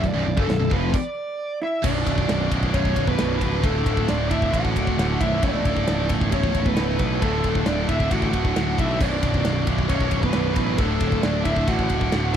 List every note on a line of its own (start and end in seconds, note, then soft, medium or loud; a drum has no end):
0.03 0.14 B0 medium
0.03 0.13 B1 medium
0.03 0.14 B1 medium
0.03 0.13 F#2 medium
0.03 0.14 F#2 medium
0.03 0.36 D5 loud
0.03 kick loud
0.03 china medium
0.14 0.25 B0 loud
0.14 0.24 B1 loud
0.14 0.25 B1 medium
0.14 0.25 F#2 loud
0.14 0.26 F#2 loud
0.25 0.36 B0 medium
0.25 0.36 B1 medium
0.25 0.37 B1 medium
0.25 0.35 F#2 medium
0.25 0.37 F#2 medium
0.37 0.48 F#1 medium
0.37 0.47 F#2 medium
0.37 0.48 F#2 loud
0.37 0.48 C#3 loud
0.37 0.49 C#3 loud
0.37 0.73 A4 medium
0.37 kick loud
0.48 0.59 B0 medium
0.48 0.58 B1 medium
0.48 0.61 B1 medium
0.48 0.59 F#2 medium
0.48 0.61 F#2 medium
0.48 snare loud
0.48 china medium
0.59 0.70 B0 medium
0.59 0.70 B1 medium
0.59 0.72 B1 medium
0.59 0.71 F#2 medium
0.59 0.72 F#2 medium
0.70 0.92 F1 loud
0.70 0.93 F2 medium
0.70 0.93 F2 loud
0.70 0.93 C3 loud
0.70 0.94 C3 loud
0.70 0.93 F3 loud
0.70 0.94 F3 medium
0.70 0.95 B4 medium
0.70 kick loud
0.94 1.57 D5 medium
0.94 kick loud
0.94 crash loud
1.62 1.82 E4 medium
1.62 1.83 E5 loud
1.84 2.03 B0 medium
1.84 2.50 B1 loud
1.84 2.50 F#2 medium
1.84 2.49 B2 medium
1.84 1.92 F#3 medium
1.84 2.47 D4 medium
1.84 1.92 D4 medium
1.84 2.48 D5 loud
1.84 kick loud
1.84 crash loud
1.92 1.99 F#3 medium
1.92 2.00 D4 medium
2.00 2.07 F#3 medium
2.00 2.08 D4 medium
2.07 2.25 B0 medium
2.07 2.14 F#3 medium
2.07 2.16 D4 medium
2.07 kick medium
2.07 ride medium
2.15 2.23 F#3 medium
2.15 2.22 D4 medium
2.15 kick medium
2.23 2.30 F#3 medium
2.23 2.31 D4 medium
2.29 2.48 B0 medium
2.29 2.38 F#3 medium
2.29 2.37 D4 medium
2.29 snare loud
2.29 ride loud
2.38 2.47 F#3 medium
2.38 2.46 D4 medium
2.47 3.17 B2 medium
2.47 2.54 F#3 medium
2.47 2.55 D4 medium
2.52 2.70 B0 medium
2.52 3.16 B1 medium
2.52 3.18 F#2 medium
2.52 2.62 F#3 medium
2.52 2.62 D4 medium
2.52 kick medium
2.52 ride medium
2.62 2.69 F#3 medium
2.62 2.70 D4 medium
2.62 kick medium
2.69 3.61 B1 medium
2.69 2.77 F#3 medium
2.69 2.78 D4 medium
2.74 2.93 B0 medium
2.74 3.63 F#2 medium
2.74 3.63 B2 medium
2.74 3.05 C#4 medium
2.74 3.05 C#5 medium
2.74 kick loud
2.74 ride loud
2.78 2.85 F#3 medium
2.78 2.85 D4 medium
2.85 2.93 F#3 medium
2.85 2.93 D4 medium
2.85 kick medium
2.93 3.15 B0 medium
2.93 3.01 F#3 medium
2.93 3.01 D4 medium
2.93 kick medium
2.93 ride medium
3.01 3.08 F#3 medium
3.01 3.09 D4 medium
3.07 3.16 F#3 medium
3.07 3.39 B3 medium
3.07 3.16 D4 medium
3.07 3.39 B4 medium
3.07 kick medium
3.16 3.62 B1 medium
3.16 3.63 F#2 medium
3.16 3.24 F#3 medium
3.16 3.24 D4 medium
3.16 snare loud
3.16 ride loud
3.20 3.39 B0 medium
3.20 3.63 B2 medium
3.24 3.32 F#3 medium
3.24 3.32 D4 medium
3.32 3.40 F#3 medium
3.32 3.39 D4 medium
3.39 3.60 C#1 medium
3.39 3.48 F#3 medium
3.39 3.62 B3 medium
3.39 3.47 D4 medium
3.39 3.64 B4 medium
3.39 kick medium
3.39 ride medium
3.47 3.56 F#3 medium
3.47 3.55 D4 medium
3.55 3.64 F#3 medium
3.55 3.63 D4 medium
3.62 3.82 D1 medium
3.62 4.29 D2 loud
3.62 4.30 A2 medium
3.62 4.28 D3 loud
3.62 3.70 A3 medium
3.62 4.05 A3 medium
3.62 3.71 D4 medium
3.62 4.06 A4 medium
3.62 kick loud
3.62 ride medium
3.71 3.78 A3 medium
3.71 3.78 D4 medium
3.78 3.86 A3 medium
3.78 3.86 D4 medium
3.86 4.05 D1 medium
3.86 3.93 A3 medium
3.86 3.94 D4 medium
3.86 kick medium
3.86 ride medium
3.93 4.01 A3 medium
3.93 4.02 D4 medium
3.93 kick medium
4.02 4.09 A3 medium
4.02 4.10 D4 medium
4.08 4.28 D1 medium
4.08 4.17 A3 medium
4.08 4.29 D4 medium
4.08 4.17 D4 medium
4.08 4.29 D5 loud
4.08 snare loud
4.08 ride loud
4.18 4.25 A3 medium
4.18 4.25 D4 medium
4.25 4.33 A3 medium
4.25 4.34 D4 medium
4.30 4.50 D1 medium
4.30 4.96 D2 medium
4.30 4.97 A2 medium
4.30 4.96 D3 medium
4.30 4.52 E4 medium
4.30 4.54 E5 loud
4.30 kick medium
4.30 ride medium
4.34 4.40 A3 medium
4.34 4.41 D4 medium
4.41 4.48 A3 medium
4.41 4.49 D4 medium
4.41 kick medium
4.48 5.41 D2 medium
4.48 4.56 A3 medium
4.48 4.57 D4 medium
4.53 4.72 A1 loud
4.53 5.40 A2 loud
4.53 5.42 D3 medium
4.53 4.64 A3 medium
4.53 5.16 F#4 loud
4.53 5.22 F#5 loud
4.53 kick loud
4.53 ride loud
4.58 4.64 D4 medium
4.64 4.72 A3 medium
4.64 4.72 D4 medium
4.64 kick medium
4.72 4.95 D1 medium
4.72 4.80 A3 medium
4.72 4.79 D4 medium
4.72 kick medium
4.76 4.87 A3 medium
4.76 4.87 D4 medium
4.76 ride medium
4.87 4.95 A3 medium
4.87 4.95 D4 medium
4.87 kick medium
4.96 5.17 D1 medium
4.96 5.41 D2 medium
4.96 5.40 A2 medium
4.96 5.42 D3 loud
4.96 5.02 A3 medium
4.96 5.04 D4 medium
4.96 snare loud
4.96 ride loud
5.03 5.10 A3 medium
5.03 5.12 D4 medium
5.11 5.19 A3 medium
5.11 5.19 D4 medium
5.20 5.43 B0 medium
5.20 5.26 A3 medium
5.20 5.27 D4 medium
5.20 5.41 E4 medium
5.20 5.41 E5 medium
5.20 kick medium
5.20 ride medium
5.27 5.35 A3 medium
5.27 5.35 D4 medium
5.35 5.43 A3 medium
5.35 5.43 D4 medium
5.41 5.62 C#1 loud
5.41 6.08 A2 loud
5.41 6.09 E3 loud
5.41 6.08 A3 loud
5.41 6.06 D4 medium
5.41 5.51 E4 medium
5.41 5.51 A4 medium
5.41 6.07 D5 loud
5.41 kick loud
5.41 ride loud
5.51 5.59 E4 medium
5.51 5.59 A4 medium
5.60 5.66 E4 medium
5.60 5.68 A4 medium
5.65 5.84 C#1 medium
5.65 5.74 E4 medium
5.65 5.74 A4 medium
5.65 kick medium
5.65 ride medium
5.74 5.82 E4 medium
5.74 5.83 A4 medium
5.74 kick medium
5.82 5.90 E4 medium
5.82 5.91 A4 medium
5.87 6.06 C#1 medium
5.87 5.98 E4 medium
5.87 5.98 A4 medium
5.87 snare loud
5.87 ride loud
5.98 6.05 E4 medium
5.98 6.05 A4 medium
6.05 6.75 A3 medium
6.05 6.13 E4 medium
6.05 6.13 A4 medium
6.09 6.29 C#1 medium
6.09 6.75 A2 medium
6.09 6.76 E3 medium
6.09 6.21 A4 medium
6.09 kick medium
6.09 ride medium
6.14 6.21 E4 medium
6.21 6.29 E4 medium
6.21 6.29 A4 loud
6.21 kick medium
6.29 6.51 C#1 loud
6.29 7.20 A2 medium
6.29 7.21 E3 medium
6.29 6.64 C#4 medium
6.29 6.37 E4 medium
6.29 6.37 A4 medium
6.29 6.67 C#5 loud
6.29 kick loud
6.29 ride loud
6.34 7.21 A3 loud
6.34 6.43 E4 medium
6.34 6.45 A4 medium
6.43 6.51 E4 medium
6.43 6.52 A4 medium
6.43 kick medium
6.52 6.74 C#1 loud
6.52 6.60 E4 medium
6.52 6.60 A4 medium
6.52 kick medium
6.52 ride medium
6.60 6.67 E4 medium
6.60 6.67 A4 medium
6.66 6.97 B3 medium
6.66 6.75 E4 medium
6.66 6.75 A4 medium
6.66 6.98 B4 medium
6.66 kick medium
6.75 6.96 C#1 medium
6.75 7.20 A2 medium
6.75 7.21 E3 medium
6.75 7.21 A3 loud
6.75 6.83 E4 medium
6.75 6.83 A4 medium
6.75 snare loud
6.75 ride loud
6.84 6.90 E4 medium
6.84 6.91 A4 medium
6.90 6.98 E4 medium
6.90 6.98 A4 medium
6.99 7.18 B1 medium
6.99 7.20 B3 medium
6.99 7.06 E4 medium
6.99 7.06 A4 medium
6.99 7.21 B4 medium
6.99 kick medium
6.99 ride medium
7.06 7.14 E4 medium
7.06 7.15 A4 medium
7.15 7.22 E4 medium
7.15 7.23 A4 medium
7.21 7.41 D1 loud
7.21 7.87 D2 medium
7.21 7.88 A2 loud
7.21 7.87 D3 loud
7.21 7.63 A3 medium
7.21 7.30 A3 medium
7.21 7.31 D4 medium
7.21 7.63 A4 loud
7.21 kick loud
7.21 ride medium
7.30 7.37 A3 medium
7.30 7.39 D4 medium
7.37 7.45 A3 medium
7.37 7.46 D4 medium
7.44 7.63 D1 medium
7.44 7.53 A3 medium
7.44 7.53 D4 medium
7.44 kick medium
7.44 ride medium
7.53 7.61 A3 medium
7.53 7.61 D4 medium
7.53 kick medium
7.61 7.68 A3 medium
7.61 7.69 D4 medium
7.66 7.85 D1 medium
7.66 7.77 A3 medium
7.66 7.88 D4 medium
7.66 7.76 D4 medium
7.66 7.88 D5 loud
7.66 snare loud
7.66 ride loud
7.76 7.84 A3 medium
7.76 7.84 D4 medium
7.84 8.54 D3 medium
7.84 7.92 A3 medium
7.84 7.92 D4 medium
7.89 8.08 D1 medium
7.89 8.54 D2 medium
7.89 8.55 A2 medium
7.89 7.99 D4 medium
7.89 8.10 E4 medium
7.89 8.10 E5 medium
7.89 kick medium
7.89 ride medium
7.93 7.99 A3 medium
8.00 8.07 A3 medium
8.00 8.07 D4 medium
8.00 kick medium
8.08 8.30 A1 loud
8.08 8.98 D2 medium
8.08 8.99 A2 medium
8.08 8.15 A3 medium
8.08 8.15 D4 medium
8.08 8.80 F#5 loud
8.08 kick loud
8.08 ride loud
8.12 9.00 D3 medium
8.12 8.22 A3 medium
8.12 8.23 D4 medium
8.12 8.75 F#4 medium
8.22 8.30 A3 medium
8.22 8.30 D4 medium
8.22 kick medium
8.31 8.52 D1 medium
8.31 8.38 A3 medium
8.31 8.39 D4 medium
8.31 kick medium
8.31 ride medium
8.39 8.46 A3 medium
8.39 8.45 D4 medium
8.45 8.54 A3 medium
8.45 8.53 D4 medium
8.45 kick medium
8.54 8.75 D1 medium
8.54 8.99 D2 medium
8.54 8.99 A2 medium
8.54 9.00 D3 medium
8.54 8.61 A3 medium
8.54 8.60 D4 medium
8.54 snare loud
8.54 ride loud
8.61 8.69 A3 medium
8.61 8.68 D4 medium
8.69 8.77 A3 medium
8.69 8.75 D4 medium
8.76 8.97 B1 medium
8.76 8.84 A3 medium
8.76 8.83 D4 medium
8.76 9.00 E4 medium
8.76 8.99 E5 loud
8.76 kick medium
8.76 ride medium
8.84 8.92 A3 medium
8.84 8.92 D4 medium
8.92 9.00 A3 medium
8.92 9.00 D4 medium
8.99 9.19 B0 medium
8.99 9.65 B1 loud
8.99 9.66 F#2 medium
8.99 9.65 B2 loud
8.99 9.07 F#3 medium
8.99 9.08 D4 loud
8.99 9.64 D4 medium
8.99 9.64 D5 loud
8.99 kick loud
8.99 crash loud
9.08 9.15 F#3 medium
9.08 9.16 D4 medium
9.17 9.23 F#3 medium
9.17 9.24 D4 medium
9.23 9.42 B0 medium
9.23 9.31 F#3 medium
9.23 9.32 D4 medium
9.23 kick medium
9.23 ride medium
9.32 9.39 F#3 medium
9.32 9.39 D4 medium
9.32 kick medium
9.39 9.46 F#3 medium
9.39 9.48 D4 medium
9.45 9.63 B0 medium
9.45 9.54 F#3 medium
9.45 9.55 D4 medium
9.45 snare loud
9.45 ride loud
9.55 9.61 F#3 medium
9.55 9.62 D4 medium
9.62 9.69 F#3 medium
9.62 9.70 D4 medium
9.66 9.86 B0 medium
9.66 10.32 B1 medium
9.66 10.33 F#2 medium
9.66 10.32 B2 medium
9.66 9.78 F#3 medium
9.66 9.78 D4 medium
9.66 kick medium
9.66 ride medium
9.78 9.86 F#3 medium
9.78 9.86 D4 medium
9.78 kick medium
9.86 10.08 B0 loud
9.86 10.77 B1 medium
9.86 9.92 F#3 medium
9.86 10.20 C#4 medium
9.86 9.94 D4 medium
9.86 10.20 C#5 loud
9.86 kick loud
9.86 ride loud
9.90 10.78 F#2 medium
9.90 10.79 B2 loud
9.90 10.00 F#3 medium
9.90 10.01 D4 medium
10.01 10.09 F#3 medium
10.01 10.08 D4 medium
10.01 kick medium
10.08 10.30 B0 medium
10.08 10.16 F#3 medium
10.08 10.16 D4 medium
10.08 kick medium
10.08 ride medium
10.17 10.24 F#3 medium
10.17 10.24 D4 medium
10.22 10.32 F#3 medium
10.22 10.55 B3 medium
10.22 10.32 D4 medium
10.22 10.54 B4 medium
10.22 kick medium
10.32 10.53 B0 medium
10.32 10.77 B1 medium
10.32 10.78 F#2 medium
10.32 10.78 B2 medium
10.32 10.40 F#3 medium
10.32 10.39 D4 medium
10.32 snare loud
10.32 ride loud
10.40 10.47 F#3 medium
10.40 10.48 D4 medium
10.48 10.55 F#3 medium
10.48 10.55 D4 medium
10.55 10.75 A1 medium
10.55 10.63 F#3 medium
10.55 10.77 B3 medium
10.55 10.63 D4 medium
10.55 10.76 B4 medium
10.55 kick medium
10.55 ride medium
10.64 10.70 F#3 medium
10.64 10.70 D4 medium
10.70 10.79 F#3 medium
10.70 10.78 D4 medium
10.77 10.97 D1 medium
10.77 11.43 D2 medium
10.77 11.44 A2 loud
10.77 11.43 D3 loud
10.77 10.87 A3 medium
10.77 11.21 A3 medium
10.77 10.87 D4 loud
10.77 11.24 A4 loud
10.77 kick loud
10.77 ride loud
10.88 10.93 A3 medium
10.88 10.95 D4 medium
10.94 11.01 A3 medium
10.94 11.03 D4 medium
11.00 11.20 D1 medium
11.00 11.09 A3 medium
11.00 11.10 D4 medium
11.00 kick medium
11.00 ride medium
11.10 11.17 A3 medium
11.10 11.18 D4 medium
11.10 kick medium
11.18 11.25 A3 medium
11.18 11.26 D4 medium
11.22 11.42 D1 medium
11.22 11.33 A3 medium
11.22 11.44 D4 medium
11.22 11.44 D5 loud
11.22 snare loud
11.22 ride loud
11.26 11.34 D4 medium
11.33 11.41 A3 medium
11.33 11.41 D4 medium
11.41 12.11 D3 medium
11.41 11.49 A3 medium
11.41 11.49 D4 medium
11.41 11.66 E4 medium
11.41 11.68 E5 loud
11.41 ride medium
11.45 11.64 D1 loud
11.45 12.11 D2 medium
11.45 12.11 A2 medium
11.45 11.56 A3 medium
11.45 kick medium
11.51 11.56 D4 medium
11.56 11.64 A3 medium
11.56 11.64 D4 medium
11.56 kick medium
11.64 11.87 A1 loud
11.64 12.37 D2 medium
11.64 12.37 A2 medium
11.64 11.71 A3 medium
11.64 11.72 D4 medium
11.64 12.31 F#4 loud
11.64 12.37 F#5 loud
11.64 kick loud
11.64 ride loud
11.69 12.37 D3 medium
11.69 11.79 A3 medium
11.69 11.80 D4 medium
11.79 11.87 A3 medium
11.79 11.88 D4 medium
11.79 kick medium
11.89 12.09 D1 medium
11.89 11.94 A3 medium
11.89 11.96 D4 medium
11.89 kick medium
11.89 ride medium
11.95 12.03 A3 medium
11.95 12.03 D4 medium
12.01 12.11 A3 medium
12.01 12.11 D4 medium
12.01 kick medium
12.11 12.32 D1 medium
12.11 12.37 D2 medium
12.11 12.37 A2 medium
12.11 12.37 D3 medium
12.11 12.19 A3 medium
12.11 12.18 D4 medium
12.11 snare loud
12.11 ride loud
12.18 12.26 A3 medium
12.18 12.26 D4 medium
12.26 12.33 A3 medium
12.26 12.34 D4 medium
12.33 12.37 A3 medium
12.33 12.37 E5 loud